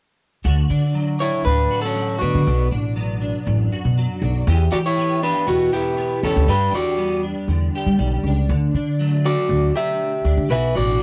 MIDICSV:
0, 0, Header, 1, 5, 480
1, 0, Start_track
1, 0, Key_signature, 2, "major"
1, 0, Tempo, 502934
1, 424, Time_signature, 4, 2, 24, 8
1, 10524, End_track
2, 0, Start_track
2, 0, Title_t, "Clean electric guitar"
2, 0, Program_c, 0, 27
2, 1148, Note_on_c, 0, 73, 83
2, 1159, Note_on_c, 0, 64, 71
2, 1376, Note_off_c, 0, 64, 0
2, 1376, Note_off_c, 0, 73, 0
2, 1380, Note_on_c, 0, 71, 87
2, 1405, Note_on_c, 0, 62, 60
2, 1726, Note_off_c, 0, 71, 0
2, 1734, Note_on_c, 0, 69, 87
2, 1739, Note_off_c, 0, 62, 0
2, 1768, Note_on_c, 0, 61, 64
2, 2082, Note_off_c, 0, 69, 0
2, 2086, Note_on_c, 0, 66, 63
2, 2090, Note_off_c, 0, 61, 0
2, 2112, Note_on_c, 0, 59, 54
2, 2543, Note_off_c, 0, 66, 0
2, 2557, Note_off_c, 0, 59, 0
2, 4503, Note_on_c, 0, 66, 80
2, 4508, Note_on_c, 0, 74, 78
2, 4553, Note_off_c, 0, 66, 0
2, 4554, Note_off_c, 0, 74, 0
2, 4638, Note_on_c, 0, 73, 90
2, 4643, Note_on_c, 0, 64, 67
2, 4968, Note_off_c, 0, 64, 0
2, 4989, Note_on_c, 0, 62, 75
2, 4991, Note_off_c, 0, 73, 0
2, 4995, Note_on_c, 0, 71, 68
2, 5213, Note_off_c, 0, 62, 0
2, 5220, Note_on_c, 0, 59, 59
2, 5228, Note_on_c, 0, 66, 80
2, 5237, Note_off_c, 0, 71, 0
2, 5447, Note_off_c, 0, 59, 0
2, 5465, Note_off_c, 0, 66, 0
2, 5469, Note_on_c, 0, 67, 77
2, 5471, Note_on_c, 0, 59, 58
2, 5915, Note_off_c, 0, 59, 0
2, 5947, Note_off_c, 0, 67, 0
2, 5951, Note_on_c, 0, 61, 60
2, 5960, Note_on_c, 0, 69, 84
2, 6173, Note_off_c, 0, 61, 0
2, 6193, Note_on_c, 0, 62, 70
2, 6200, Note_on_c, 0, 71, 85
2, 6201, Note_off_c, 0, 69, 0
2, 6414, Note_off_c, 0, 62, 0
2, 6418, Note_off_c, 0, 71, 0
2, 6440, Note_on_c, 0, 66, 68
2, 6446, Note_on_c, 0, 74, 78
2, 6880, Note_off_c, 0, 66, 0
2, 6883, Note_off_c, 0, 74, 0
2, 8832, Note_on_c, 0, 66, 70
2, 8835, Note_on_c, 0, 74, 81
2, 9275, Note_off_c, 0, 66, 0
2, 9312, Note_on_c, 0, 67, 69
2, 9318, Note_off_c, 0, 74, 0
2, 9322, Note_on_c, 0, 76, 90
2, 9990, Note_off_c, 0, 67, 0
2, 9995, Note_off_c, 0, 76, 0
2, 10027, Note_on_c, 0, 71, 78
2, 10042, Note_on_c, 0, 76, 100
2, 10249, Note_off_c, 0, 71, 0
2, 10263, Note_on_c, 0, 66, 64
2, 10274, Note_off_c, 0, 76, 0
2, 10278, Note_on_c, 0, 74, 89
2, 10487, Note_off_c, 0, 66, 0
2, 10495, Note_off_c, 0, 74, 0
2, 10524, End_track
3, 0, Start_track
3, 0, Title_t, "Clean electric guitar"
3, 0, Program_c, 1, 27
3, 422, Note_on_c, 1, 50, 70
3, 431, Note_on_c, 1, 66, 60
3, 666, Note_on_c, 1, 62, 59
3, 896, Note_on_c, 1, 54, 60
3, 1373, Note_on_c, 1, 45, 57
3, 1619, Note_off_c, 1, 66, 0
3, 1630, Note_on_c, 1, 66, 69
3, 1848, Note_off_c, 1, 54, 0
3, 1860, Note_on_c, 1, 54, 60
3, 2109, Note_off_c, 1, 62, 0
3, 2113, Note_on_c, 1, 62, 59
3, 2315, Note_off_c, 1, 45, 0
3, 2317, Note_off_c, 1, 54, 0
3, 2320, Note_off_c, 1, 50, 0
3, 2324, Note_off_c, 1, 62, 0
3, 2347, Note_on_c, 1, 47, 68
3, 2355, Note_on_c, 1, 62, 56
3, 2579, Note_off_c, 1, 62, 0
3, 2590, Note_on_c, 1, 62, 67
3, 2823, Note_on_c, 1, 54, 55
3, 2827, Note_on_c, 1, 59, 49
3, 3055, Note_off_c, 1, 62, 0
3, 3066, Note_on_c, 1, 62, 59
3, 3301, Note_on_c, 1, 42, 60
3, 3310, Note_off_c, 1, 47, 0
3, 3543, Note_off_c, 1, 66, 0
3, 3554, Note_on_c, 1, 66, 72
3, 3784, Note_off_c, 1, 54, 0
3, 3795, Note_on_c, 1, 54, 60
3, 4028, Note_off_c, 1, 62, 0
3, 4043, Note_on_c, 1, 62, 49
3, 4245, Note_off_c, 1, 54, 0
3, 4249, Note_off_c, 1, 62, 0
3, 4265, Note_off_c, 1, 42, 0
3, 4272, Note_off_c, 1, 66, 0
3, 4273, Note_on_c, 1, 52, 73
3, 4284, Note_on_c, 1, 67, 72
3, 4514, Note_off_c, 1, 67, 0
3, 4518, Note_on_c, 1, 67, 69
3, 4741, Note_off_c, 1, 59, 0
3, 4745, Note_on_c, 1, 59, 54
3, 4752, Note_on_c, 1, 64, 58
3, 4991, Note_off_c, 1, 67, 0
3, 4995, Note_on_c, 1, 67, 63
3, 5226, Note_on_c, 1, 47, 57
3, 5449, Note_off_c, 1, 64, 0
3, 5461, Note_on_c, 1, 64, 61
3, 5689, Note_off_c, 1, 59, 0
3, 5700, Note_on_c, 1, 59, 62
3, 5940, Note_off_c, 1, 67, 0
3, 5951, Note_on_c, 1, 67, 65
3, 6157, Note_off_c, 1, 59, 0
3, 6157, Note_off_c, 1, 64, 0
3, 6163, Note_off_c, 1, 67, 0
3, 6187, Note_off_c, 1, 47, 0
3, 6187, Note_on_c, 1, 67, 68
3, 6190, Note_off_c, 1, 52, 0
3, 6409, Note_on_c, 1, 62, 64
3, 6655, Note_on_c, 1, 55, 59
3, 6664, Note_on_c, 1, 59, 46
3, 6899, Note_off_c, 1, 62, 0
3, 6903, Note_on_c, 1, 62, 61
3, 7148, Note_on_c, 1, 50, 59
3, 7386, Note_off_c, 1, 67, 0
3, 7400, Note_on_c, 1, 67, 72
3, 7616, Note_off_c, 1, 55, 0
3, 7627, Note_on_c, 1, 55, 58
3, 7885, Note_off_c, 1, 62, 0
3, 7889, Note_on_c, 1, 62, 54
3, 8075, Note_off_c, 1, 59, 0
3, 8079, Note_off_c, 1, 50, 0
3, 8079, Note_off_c, 1, 55, 0
3, 8085, Note_off_c, 1, 67, 0
3, 8105, Note_on_c, 1, 50, 73
3, 8352, Note_off_c, 1, 62, 0
3, 8356, Note_on_c, 1, 62, 61
3, 8583, Note_on_c, 1, 54, 56
3, 8596, Note_on_c, 1, 57, 53
3, 8838, Note_off_c, 1, 62, 0
3, 8842, Note_on_c, 1, 62, 61
3, 9544, Note_off_c, 1, 54, 0
3, 9773, Note_off_c, 1, 62, 0
3, 9784, Note_on_c, 1, 62, 52
3, 9997, Note_off_c, 1, 50, 0
3, 9997, Note_off_c, 1, 62, 0
3, 10009, Note_on_c, 1, 47, 80
3, 10022, Note_on_c, 1, 66, 73
3, 10030, Note_off_c, 1, 57, 0
3, 10258, Note_on_c, 1, 62, 61
3, 10495, Note_on_c, 1, 54, 55
3, 10524, Note_off_c, 1, 47, 0
3, 10524, Note_off_c, 1, 54, 0
3, 10524, Note_off_c, 1, 62, 0
3, 10524, Note_off_c, 1, 66, 0
3, 10524, End_track
4, 0, Start_track
4, 0, Title_t, "Upright bass"
4, 0, Program_c, 2, 32
4, 427, Note_on_c, 2, 38, 98
4, 616, Note_off_c, 2, 38, 0
4, 669, Note_on_c, 2, 50, 74
4, 1238, Note_off_c, 2, 50, 0
4, 1390, Note_on_c, 2, 38, 77
4, 1579, Note_off_c, 2, 38, 0
4, 2111, Note_on_c, 2, 38, 86
4, 2211, Note_off_c, 2, 38, 0
4, 2241, Note_on_c, 2, 50, 87
4, 2328, Note_off_c, 2, 50, 0
4, 2360, Note_on_c, 2, 35, 99
4, 2545, Note_off_c, 2, 35, 0
4, 2595, Note_on_c, 2, 33, 74
4, 3163, Note_off_c, 2, 33, 0
4, 3310, Note_on_c, 2, 33, 93
4, 3499, Note_off_c, 2, 33, 0
4, 3672, Note_on_c, 2, 47, 79
4, 3864, Note_off_c, 2, 47, 0
4, 4024, Note_on_c, 2, 35, 86
4, 4216, Note_off_c, 2, 35, 0
4, 4266, Note_on_c, 2, 40, 104
4, 4457, Note_off_c, 2, 40, 0
4, 4511, Note_on_c, 2, 52, 78
4, 5079, Note_off_c, 2, 52, 0
4, 5227, Note_on_c, 2, 40, 85
4, 5417, Note_off_c, 2, 40, 0
4, 5948, Note_on_c, 2, 40, 84
4, 6049, Note_off_c, 2, 40, 0
4, 6073, Note_on_c, 2, 38, 94
4, 6163, Note_off_c, 2, 38, 0
4, 6183, Note_on_c, 2, 43, 87
4, 6374, Note_off_c, 2, 43, 0
4, 6423, Note_on_c, 2, 40, 71
4, 6994, Note_off_c, 2, 40, 0
4, 7136, Note_on_c, 2, 40, 81
4, 7330, Note_off_c, 2, 40, 0
4, 7505, Note_on_c, 2, 55, 81
4, 7597, Note_off_c, 2, 55, 0
4, 7621, Note_on_c, 2, 35, 87
4, 7839, Note_off_c, 2, 35, 0
4, 7859, Note_on_c, 2, 37, 81
4, 8078, Note_off_c, 2, 37, 0
4, 8105, Note_on_c, 2, 38, 100
4, 8295, Note_off_c, 2, 38, 0
4, 8343, Note_on_c, 2, 50, 78
4, 8913, Note_off_c, 2, 50, 0
4, 9059, Note_on_c, 2, 38, 88
4, 9251, Note_off_c, 2, 38, 0
4, 9779, Note_on_c, 2, 38, 82
4, 9882, Note_off_c, 2, 38, 0
4, 9903, Note_on_c, 2, 50, 88
4, 9995, Note_off_c, 2, 50, 0
4, 10020, Note_on_c, 2, 35, 88
4, 10212, Note_off_c, 2, 35, 0
4, 10264, Note_on_c, 2, 33, 80
4, 10524, Note_off_c, 2, 33, 0
4, 10524, End_track
5, 0, Start_track
5, 0, Title_t, "Muted clean electric guitar strokes"
5, 6179, Note_on_c, 9, 29, 74
5, 6275, Note_off_c, 9, 29, 0
5, 8115, Note_on_c, 9, 29, 59
5, 8210, Note_off_c, 9, 29, 0
5, 9065, Note_on_c, 9, 29, 59
5, 9161, Note_off_c, 9, 29, 0
5, 10524, End_track
0, 0, End_of_file